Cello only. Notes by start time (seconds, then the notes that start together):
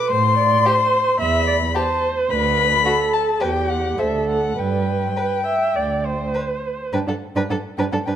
0.11 A2
1.20 E2
2.30 D2
3.41 E2
3.99 D2
4.58 G2
5.76 D2
6.93 G2
7.07 G2
7.36 G2
7.50 G2
7.78 G2
7.92 G2
8.07 G2